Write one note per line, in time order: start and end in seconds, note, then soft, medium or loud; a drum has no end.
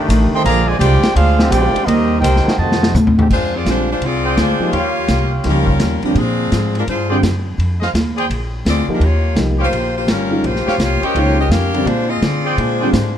0.00 0.41 D#3 loud
0.00 0.41 A3 loud
0.00 0.41 D4 loud
0.00 0.42 G4 loud
0.08 0.30 A1 loud
0.08 hi-hat pedal medium
0.08 ride medium
0.31 0.45 D#3 loud
0.31 0.45 A3 loud
0.31 0.45 C4 medium
0.31 0.45 A4 medium
0.31 0.45 D#5 medium
0.31 0.45 G5 medium
0.31 0.45 C6 loud
0.31 muted upright bass stroke soft
0.44 0.79 A#1 loud
0.44 0.64 D3 medium
0.44 0.64 F3 loud
0.44 0.66 A#3 loud
0.44 0.67 G#4 loud
0.44 0.67 D5 medium
0.44 0.67 F5 loud
0.44 0.67 A#5 loud
0.44 ride medium
0.65 0.80 D3 medium
0.65 0.80 F3 medium
0.65 0.77 G#3 medium
0.65 0.79 F4 medium
0.65 0.78 C5 medium
0.65 0.78 D5 medium
0.65 0.81 G#5 loud
0.78 1.01 C2 loud
0.78 1.12 G#3 medium
0.78 1.12 D4 medium
0.78 1.14 F4 medium
0.78 1.13 G4 medium
0.78 1.13 C5 medium
0.78 1.13 D5 loud
0.78 1.13 G5 loud
0.78 hi-hat pedal medium
0.78 ride medium
1.02 muted upright bass stroke soft
1.02 snare medium
1.02 ride medium
1.13 1.50 D2 medium
1.13 1.47 G#3 medium
1.13 1.47 D4 medium
1.13 1.48 D4 medium
1.13 1.48 F4 medium
1.13 1.49 G#4 medium
1.13 1.49 C5 medium
1.13 1.49 F5 loud
1.13 ride medium
1.38 1.84 D3 loud
1.38 1.85 G#3 loud
1.38 1.85 C4 loud
1.38 1.85 G4 loud
1.38 snare medium
1.48 1.72 A#1 loud
1.48 1.86 G#3 medium
1.48 1.86 D4 medium
1.48 1.87 F4 medium
1.48 1.86 G4 medium
1.48 1.87 C5 medium
1.48 1.87 D5 medium
1.48 1.87 G5 loud
1.48 hi-hat pedal medium
1.48 ride medium
1.74 muted upright bass stroke soft
1.74 ride medium
1.84 2.21 D#2 loud
1.84 2.22 G3 medium
1.84 2.19 A#3 medium
1.84 2.22 C4 medium
1.84 2.19 D#4 medium
1.84 2.22 G4 medium
1.84 2.20 A#4 medium
1.84 2.22 D#5 loud
1.84 ride medium
2.20 2.44 C2 loud
2.20 2.55 A#3 medium
2.20 2.55 D#4 medium
2.20 2.55 G4 medium
2.20 2.55 A#4 medium
2.20 2.55 C5 medium
2.20 2.55 G5 loud
2.20 hi-hat pedal medium
2.20 ride medium
2.36 snare soft
2.45 2.54 F3 medium
2.45 2.55 A3 medium
2.45 2.55 D#4 medium
2.45 2.54 F#4 loud
2.45 muted upright bass stroke soft
2.45 snare medium
2.58 2.93 F2 medium
2.58 2.94 C3 medium
2.58 2.94 D#3 medium
2.58 2.94 A3 medium
2.58 2.95 F#4 medium
2.58 2.95 C5 medium
2.58 2.95 D#5 medium
2.58 2.95 A5 medium
2.72 snare medium
2.83 snare medium
2.94 3.29 A2 medium
2.94 floor tom medium
2.94 hi-hat pedal medium
3.07 floor tom medium
3.17 3.26 D3 medium
3.17 3.26 G#3 medium
3.17 3.26 C4 medium
3.17 3.26 G4 loud
3.17 floor tom loud
3.30 3.64 F2 medium
3.30 3.53 G#3 medium
3.30 3.53 D4 medium
3.30 3.53 F4 medium
3.30 3.53 C5 medium
3.30 kick medium
3.30 crash medium
3.55 3.67 C4 medium
3.55 3.67 F4 medium
3.55 3.67 G#4 medium
3.55 3.67 D5 medium
3.65 4.00 A#1 medium
3.65 3.86 D3 soft
3.65 3.86 G3 soft
3.65 3.86 C4 soft
3.65 3.87 F4 medium
3.65 snare medium
3.65 hi-hat pedal soft
3.65 ride medium
3.69 3.89 G#3 medium
3.69 3.89 D4 medium
3.69 3.89 F4 medium
3.69 3.89 C5 medium
3.92 4.03 G#3 medium
3.92 4.03 D4 medium
3.92 4.02 F4 medium
3.92 4.03 C5 medium
4.00 4.35 C2 medium
4.00 ride medium
4.05 4.39 C4 medium
4.05 4.39 F4 medium
4.05 4.39 G#4 medium
4.05 4.39 D5 loud
4.23 4.70 G#4 medium
4.23 4.70 C5 medium
4.23 4.70 D5 medium
4.23 4.70 G5 medium
4.37 4.58 D2 medium
4.37 4.72 D4 medium
4.37 4.72 C5 medium
4.37 snare medium
4.37 hi-hat pedal medium
4.37 ride medium
4.41 4.72 G#3 medium
4.41 4.72 F4 medium
4.59 4.72 F3 medium
4.59 4.72 A#3 soft
4.59 4.72 D#4 medium
4.59 4.72 G4 medium
4.59 muted upright bass stroke soft
4.71 5.07 D#2 medium
4.71 5.33 F4 medium
4.71 5.71 G4 medium
4.71 5.71 C#5 medium
4.71 5.72 F5 medium
4.71 5.71 C6 medium
4.71 ride medium
4.75 5.33 A#3 medium
4.75 5.33 G4 medium
4.75 5.33 C#5 loud
5.08 5.43 C2 medium
5.08 snare medium
5.08 hi-hat pedal medium
5.08 ride medium
5.44 5.79 C#2 medium
5.44 5.65 F3 medium
5.44 5.65 A#3 soft
5.44 5.65 D#4 soft
5.44 5.65 G4 medium
5.44 snare soft
5.44 ride medium
5.49 6.01 G3 medium
5.49 6.01 C#4 medium
5.49 6.01 F4 medium
5.49 6.01 A#4 medium
5.67 kick medium
5.80 6.01 D#2 medium
5.80 snare medium
5.80 hi-hat pedal medium
5.80 ride medium
6.02 6.14 D3 medium
6.02 6.17 F3 medium
6.02 6.14 G3 medium
6.02 6.17 A#3 medium
6.02 6.14 C4 medium
6.02 6.15 D4 medium
6.02 6.17 G4 medium
6.02 muted upright bass stroke soft
6.02 ride soft
6.07 6.17 C#4 medium
6.15 6.50 A#2 medium
6.15 6.76 F3 medium
6.15 6.75 C4 medium
6.15 6.76 D4 medium
6.15 6.75 G#4 medium
6.15 ride medium
6.52 6.86 G#2 medium
6.52 snare medium
6.52 hi-hat pedal medium
6.52 ride medium
6.75 6.84 G#3 medium
6.75 6.83 F4 medium
6.75 6.83 A#4 medium
6.75 ride soft
6.79 6.84 D4 medium
6.87 7.22 G2 medium
6.87 7.21 D4 medium
6.87 7.21 F4 medium
6.87 7.22 G#4 medium
6.87 7.22 C5 medium
6.87 ride medium
7.09 7.21 D3 medium
7.09 7.21 G3 medium
7.09 7.21 C4 medium
7.09 7.21 F4 medium
7.09 7.18 G#4 medium
7.09 7.18 C5 medium
7.09 7.18 D5 medium
7.09 7.18 G5 medium
7.22 7.57 F#2 medium
7.22 snare medium
7.22 hi-hat pedal medium
7.22 ride medium
7.58 7.93 F2 medium
7.58 ride medium
7.80 7.89 G#4 medium
7.80 7.89 C5 medium
7.80 7.89 D#5 medium
7.80 7.89 F5 medium
7.80 snare soft
7.94 8.29 D#2 medium
7.94 snare medium
7.94 hi-hat pedal medium
7.94 ride medium
8.16 8.25 G#4 medium
8.16 8.25 C5 medium
8.16 8.25 D5 medium
8.16 8.25 G5 loud
8.16 ride soft
8.29 8.64 A#1 medium
8.29 ride medium
8.65 8.87 D2 medium
8.65 snare medium
8.65 hi-hat pedal medium
8.65 ride medium
8.69 8.89 C4 medium
8.69 8.89 F4 medium
8.69 8.89 G#4 medium
8.69 8.89 D5 medium
8.88 9.00 F3 medium
8.88 9.00 A#3 medium
8.88 9.00 D#4 medium
8.88 9.00 G4 medium
8.88 muted upright bass stroke soft
8.93 9.04 G#3 medium
8.93 9.04 D4 medium
8.93 9.03 F4 medium
8.93 9.04 A#4 medium
9.00 9.35 D#2 medium
9.00 ride medium
9.04 9.39 A#3 medium
9.04 9.38 F4 medium
9.04 9.39 G4 medium
9.04 9.38 C#5 medium
9.35 9.71 C2 medium
9.35 9.57 F3 medium
9.35 9.58 A#3 soft
9.35 9.58 D#4 soft
9.35 9.57 G4 medium
9.35 snare medium
9.35 hi-hat pedal soft
9.35 ride medium
9.59 9.68 G4 medium
9.59 9.68 C5 medium
9.59 9.68 C#5 medium
9.59 9.68 F5 medium
9.63 9.95 A#3 medium
9.63 9.95 F4 medium
9.63 9.95 G4 medium
9.63 9.95 C5 medium
9.72 10.06 A#1 medium
9.72 ride medium
9.98 10.09 A#3 medium
9.98 10.09 F4 medium
9.98 10.09 G4 medium
9.98 10.09 C5 medium
10.07 10.42 G1 medium
10.07 10.43 C#4 medium
10.07 snare medium
10.07 hi-hat pedal medium
10.07 ride medium
10.11 10.43 G3 medium
10.11 10.43 F4 medium
10.11 10.43 A#4 medium
10.30 10.42 D#3 medium
10.30 10.43 G#3 medium
10.30 10.42 C#4 medium
10.30 10.43 F4 medium
10.44 10.65 A#1 medium
10.44 10.81 A#3 medium
10.44 10.81 F4 medium
10.44 10.81 G4 medium
10.44 10.80 C5 loud
10.44 ride medium
10.56 snare soft
10.66 10.75 G4 medium
10.66 10.75 C5 medium
10.66 10.75 C#5 medium
10.66 10.75 F5 medium
10.66 muted upright bass stroke soft
10.66 snare soft
10.78 11.00 C2 medium
10.78 11.04 A#3 medium
10.78 11.03 G4 medium
10.78 11.04 C#5 medium
10.78 snare medium
10.78 hi-hat pedal medium
10.78 ride medium
10.82 11.04 F4 medium
11.02 11.16 C#4 medium
11.02 11.48 G4 medium
11.02 11.17 G4 medium
11.02 11.17 A#4 medium
11.02 11.49 C5 medium
11.02 11.48 C#5 medium
11.02 11.16 D#5 medium
11.02 11.49 G5 medium
11.02 muted upright bass stroke soft
11.02 ride soft
11.15 11.49 C#2 medium
11.15 11.36 D#3 medium
11.15 11.36 G#3 medium
11.15 11.40 A#3 medium
11.15 11.37 C#4 medium
11.15 11.37 F4 medium
11.15 11.40 F4 medium
11.15 11.39 G4 medium
11.15 11.40 C#5 medium
11.15 ride medium
11.39 11.50 C#4 medium
11.39 11.50 G4 medium
11.39 11.50 A#4 medium
11.39 11.51 D#5 medium
11.49 11.85 F2 medium
11.49 11.87 C#4 medium
11.49 11.87 G4 medium
11.49 11.87 A#4 medium
11.49 11.87 F5 medium
11.49 snare medium
11.49 hi-hat pedal medium
11.49 ride medium
11.74 11.85 D3 medium
11.74 11.86 G3 medium
11.74 11.86 C4 medium
11.74 11.86 D4 medium
11.74 ride soft
11.85 12.21 A#2 medium
11.85 12.10 G#3 medium
11.85 12.09 D4 medium
11.85 12.07 F4 medium
11.85 12.10 C5 medium
11.85 ride medium
12.08 12.22 C4 medium
12.08 12.22 F4 medium
12.08 12.22 G#4 medium
12.08 12.22 D#5 medium
12.22 12.57 D3 medium
12.22 12.59 C4 medium
12.22 12.58 F4 medium
12.22 12.59 G#4 medium
12.22 12.59 D5 medium
12.22 snare medium
12.22 hi-hat pedal medium
12.22 ride medium
12.44 12.78 G#4 medium
12.44 12.78 C5 medium
12.44 12.78 D5 medium
12.44 12.78 G5 medium
12.57 12.92 A#2 medium
12.57 13.18 G#3 medium
12.57 13.18 D4 medium
12.57 13.17 F4 medium
12.57 13.17 C5 medium
12.57 ride medium
12.80 12.93 D3 medium
12.80 12.93 G3 medium
12.80 12.93 C4 medium
12.80 12.93 F4 medium
12.80 12.89 G#4 medium
12.80 12.89 C5 medium
12.80 12.89 D5 medium
12.80 12.89 G5 medium
12.93 13.18 G#2 medium
12.93 snare medium
12.93 hi-hat pedal medium
12.93 ride medium